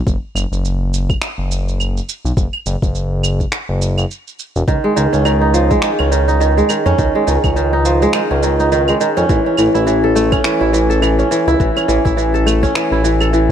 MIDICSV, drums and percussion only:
0, 0, Header, 1, 2, 480
1, 0, Start_track
1, 0, Tempo, 576923
1, 51, Time_signature, 4, 2, 24, 8
1, 11246, End_track
2, 0, Start_track
2, 0, Title_t, "Drums"
2, 55, Note_on_c, 9, 36, 121
2, 62, Note_on_c, 9, 82, 42
2, 139, Note_off_c, 9, 36, 0
2, 146, Note_off_c, 9, 82, 0
2, 296, Note_on_c, 9, 75, 62
2, 302, Note_on_c, 9, 82, 70
2, 379, Note_off_c, 9, 75, 0
2, 385, Note_off_c, 9, 82, 0
2, 440, Note_on_c, 9, 82, 34
2, 523, Note_off_c, 9, 82, 0
2, 541, Note_on_c, 9, 82, 42
2, 624, Note_off_c, 9, 82, 0
2, 779, Note_on_c, 9, 82, 74
2, 862, Note_off_c, 9, 82, 0
2, 912, Note_on_c, 9, 36, 103
2, 912, Note_on_c, 9, 75, 72
2, 919, Note_on_c, 9, 82, 34
2, 995, Note_off_c, 9, 36, 0
2, 996, Note_off_c, 9, 75, 0
2, 1002, Note_off_c, 9, 82, 0
2, 1011, Note_on_c, 9, 26, 76
2, 1018, Note_on_c, 9, 82, 43
2, 1094, Note_off_c, 9, 26, 0
2, 1101, Note_off_c, 9, 82, 0
2, 1259, Note_on_c, 9, 82, 73
2, 1343, Note_off_c, 9, 82, 0
2, 1401, Note_on_c, 9, 82, 32
2, 1484, Note_off_c, 9, 82, 0
2, 1498, Note_on_c, 9, 75, 72
2, 1504, Note_on_c, 9, 82, 43
2, 1581, Note_off_c, 9, 75, 0
2, 1587, Note_off_c, 9, 82, 0
2, 1640, Note_on_c, 9, 82, 31
2, 1724, Note_off_c, 9, 82, 0
2, 1739, Note_on_c, 9, 82, 82
2, 1822, Note_off_c, 9, 82, 0
2, 1878, Note_on_c, 9, 82, 32
2, 1961, Note_off_c, 9, 82, 0
2, 1972, Note_on_c, 9, 36, 124
2, 1978, Note_on_c, 9, 82, 46
2, 2055, Note_off_c, 9, 36, 0
2, 2061, Note_off_c, 9, 82, 0
2, 2106, Note_on_c, 9, 75, 70
2, 2189, Note_off_c, 9, 75, 0
2, 2214, Note_on_c, 9, 82, 69
2, 2297, Note_off_c, 9, 82, 0
2, 2350, Note_on_c, 9, 36, 95
2, 2356, Note_on_c, 9, 82, 33
2, 2433, Note_off_c, 9, 36, 0
2, 2439, Note_off_c, 9, 82, 0
2, 2455, Note_on_c, 9, 82, 41
2, 2538, Note_off_c, 9, 82, 0
2, 2691, Note_on_c, 9, 75, 68
2, 2697, Note_on_c, 9, 82, 70
2, 2774, Note_off_c, 9, 75, 0
2, 2780, Note_off_c, 9, 82, 0
2, 2830, Note_on_c, 9, 36, 62
2, 2834, Note_on_c, 9, 82, 33
2, 2913, Note_off_c, 9, 36, 0
2, 2917, Note_off_c, 9, 82, 0
2, 2928, Note_on_c, 9, 26, 69
2, 2935, Note_on_c, 9, 82, 44
2, 3012, Note_off_c, 9, 26, 0
2, 3018, Note_off_c, 9, 82, 0
2, 3175, Note_on_c, 9, 82, 75
2, 3259, Note_off_c, 9, 82, 0
2, 3309, Note_on_c, 9, 75, 69
2, 3315, Note_on_c, 9, 82, 33
2, 3392, Note_off_c, 9, 75, 0
2, 3398, Note_off_c, 9, 82, 0
2, 3419, Note_on_c, 9, 82, 43
2, 3502, Note_off_c, 9, 82, 0
2, 3557, Note_on_c, 9, 82, 29
2, 3640, Note_off_c, 9, 82, 0
2, 3655, Note_on_c, 9, 82, 78
2, 3738, Note_off_c, 9, 82, 0
2, 3794, Note_on_c, 9, 82, 31
2, 3877, Note_off_c, 9, 82, 0
2, 3891, Note_on_c, 9, 36, 120
2, 3893, Note_on_c, 9, 82, 40
2, 3974, Note_off_c, 9, 36, 0
2, 3976, Note_off_c, 9, 82, 0
2, 4135, Note_on_c, 9, 82, 68
2, 4218, Note_off_c, 9, 82, 0
2, 4272, Note_on_c, 9, 82, 31
2, 4356, Note_off_c, 9, 82, 0
2, 4369, Note_on_c, 9, 75, 75
2, 4376, Note_on_c, 9, 82, 41
2, 4453, Note_off_c, 9, 75, 0
2, 4459, Note_off_c, 9, 82, 0
2, 4611, Note_on_c, 9, 82, 71
2, 4695, Note_off_c, 9, 82, 0
2, 4750, Note_on_c, 9, 36, 99
2, 4750, Note_on_c, 9, 82, 33
2, 4834, Note_off_c, 9, 36, 0
2, 4834, Note_off_c, 9, 82, 0
2, 4842, Note_on_c, 9, 26, 72
2, 4848, Note_on_c, 9, 82, 43
2, 4925, Note_off_c, 9, 26, 0
2, 4931, Note_off_c, 9, 82, 0
2, 4982, Note_on_c, 9, 75, 74
2, 5065, Note_off_c, 9, 75, 0
2, 5093, Note_on_c, 9, 82, 71
2, 5176, Note_off_c, 9, 82, 0
2, 5230, Note_on_c, 9, 82, 32
2, 5313, Note_off_c, 9, 82, 0
2, 5334, Note_on_c, 9, 82, 42
2, 5417, Note_off_c, 9, 82, 0
2, 5475, Note_on_c, 9, 82, 28
2, 5558, Note_off_c, 9, 82, 0
2, 5565, Note_on_c, 9, 75, 72
2, 5571, Note_on_c, 9, 82, 80
2, 5648, Note_off_c, 9, 75, 0
2, 5655, Note_off_c, 9, 82, 0
2, 5711, Note_on_c, 9, 82, 30
2, 5794, Note_off_c, 9, 82, 0
2, 5812, Note_on_c, 9, 36, 113
2, 5812, Note_on_c, 9, 82, 41
2, 5895, Note_off_c, 9, 36, 0
2, 5896, Note_off_c, 9, 82, 0
2, 6053, Note_on_c, 9, 82, 60
2, 6137, Note_off_c, 9, 82, 0
2, 6188, Note_on_c, 9, 75, 68
2, 6191, Note_on_c, 9, 36, 94
2, 6194, Note_on_c, 9, 82, 29
2, 6271, Note_off_c, 9, 75, 0
2, 6274, Note_off_c, 9, 36, 0
2, 6277, Note_off_c, 9, 82, 0
2, 6294, Note_on_c, 9, 82, 40
2, 6378, Note_off_c, 9, 82, 0
2, 6534, Note_on_c, 9, 82, 67
2, 6617, Note_off_c, 9, 82, 0
2, 6673, Note_on_c, 9, 82, 33
2, 6756, Note_off_c, 9, 82, 0
2, 6765, Note_on_c, 9, 26, 69
2, 6765, Note_on_c, 9, 75, 70
2, 6772, Note_on_c, 9, 82, 40
2, 6849, Note_off_c, 9, 26, 0
2, 6849, Note_off_c, 9, 75, 0
2, 6855, Note_off_c, 9, 82, 0
2, 7012, Note_on_c, 9, 82, 69
2, 7096, Note_off_c, 9, 82, 0
2, 7153, Note_on_c, 9, 82, 31
2, 7236, Note_off_c, 9, 82, 0
2, 7254, Note_on_c, 9, 82, 38
2, 7337, Note_off_c, 9, 82, 0
2, 7387, Note_on_c, 9, 75, 73
2, 7393, Note_on_c, 9, 82, 28
2, 7470, Note_off_c, 9, 75, 0
2, 7477, Note_off_c, 9, 82, 0
2, 7493, Note_on_c, 9, 82, 69
2, 7577, Note_off_c, 9, 82, 0
2, 7631, Note_on_c, 9, 82, 30
2, 7714, Note_off_c, 9, 82, 0
2, 7732, Note_on_c, 9, 82, 41
2, 7733, Note_on_c, 9, 36, 118
2, 7815, Note_off_c, 9, 82, 0
2, 7816, Note_off_c, 9, 36, 0
2, 7965, Note_on_c, 9, 75, 71
2, 7972, Note_on_c, 9, 82, 66
2, 8049, Note_off_c, 9, 75, 0
2, 8055, Note_off_c, 9, 82, 0
2, 8112, Note_on_c, 9, 82, 29
2, 8195, Note_off_c, 9, 82, 0
2, 8215, Note_on_c, 9, 82, 42
2, 8299, Note_off_c, 9, 82, 0
2, 8455, Note_on_c, 9, 82, 66
2, 8539, Note_off_c, 9, 82, 0
2, 8587, Note_on_c, 9, 75, 80
2, 8591, Note_on_c, 9, 36, 94
2, 8594, Note_on_c, 9, 82, 31
2, 8671, Note_off_c, 9, 75, 0
2, 8675, Note_off_c, 9, 36, 0
2, 8677, Note_off_c, 9, 82, 0
2, 8689, Note_on_c, 9, 26, 69
2, 8695, Note_on_c, 9, 82, 42
2, 8772, Note_off_c, 9, 26, 0
2, 8778, Note_off_c, 9, 82, 0
2, 8936, Note_on_c, 9, 82, 66
2, 9019, Note_off_c, 9, 82, 0
2, 9074, Note_on_c, 9, 82, 31
2, 9157, Note_off_c, 9, 82, 0
2, 9171, Note_on_c, 9, 75, 75
2, 9178, Note_on_c, 9, 82, 41
2, 9254, Note_off_c, 9, 75, 0
2, 9261, Note_off_c, 9, 82, 0
2, 9313, Note_on_c, 9, 82, 29
2, 9396, Note_off_c, 9, 82, 0
2, 9415, Note_on_c, 9, 82, 74
2, 9498, Note_off_c, 9, 82, 0
2, 9555, Note_on_c, 9, 82, 28
2, 9638, Note_off_c, 9, 82, 0
2, 9651, Note_on_c, 9, 36, 116
2, 9655, Note_on_c, 9, 82, 41
2, 9735, Note_off_c, 9, 36, 0
2, 9738, Note_off_c, 9, 82, 0
2, 9790, Note_on_c, 9, 75, 82
2, 9796, Note_on_c, 9, 82, 28
2, 9873, Note_off_c, 9, 75, 0
2, 9880, Note_off_c, 9, 82, 0
2, 9893, Note_on_c, 9, 82, 65
2, 9977, Note_off_c, 9, 82, 0
2, 10030, Note_on_c, 9, 36, 94
2, 10036, Note_on_c, 9, 82, 28
2, 10113, Note_off_c, 9, 36, 0
2, 10119, Note_off_c, 9, 82, 0
2, 10136, Note_on_c, 9, 82, 41
2, 10219, Note_off_c, 9, 82, 0
2, 10277, Note_on_c, 9, 82, 27
2, 10360, Note_off_c, 9, 82, 0
2, 10373, Note_on_c, 9, 75, 71
2, 10379, Note_on_c, 9, 82, 70
2, 10456, Note_off_c, 9, 75, 0
2, 10463, Note_off_c, 9, 82, 0
2, 10511, Note_on_c, 9, 36, 55
2, 10516, Note_on_c, 9, 82, 32
2, 10594, Note_off_c, 9, 36, 0
2, 10599, Note_off_c, 9, 82, 0
2, 10611, Note_on_c, 9, 26, 76
2, 10618, Note_on_c, 9, 82, 40
2, 10695, Note_off_c, 9, 26, 0
2, 10701, Note_off_c, 9, 82, 0
2, 10855, Note_on_c, 9, 82, 70
2, 10939, Note_off_c, 9, 82, 0
2, 10986, Note_on_c, 9, 75, 76
2, 10993, Note_on_c, 9, 82, 29
2, 11070, Note_off_c, 9, 75, 0
2, 11076, Note_off_c, 9, 82, 0
2, 11096, Note_on_c, 9, 82, 39
2, 11179, Note_off_c, 9, 82, 0
2, 11246, End_track
0, 0, End_of_file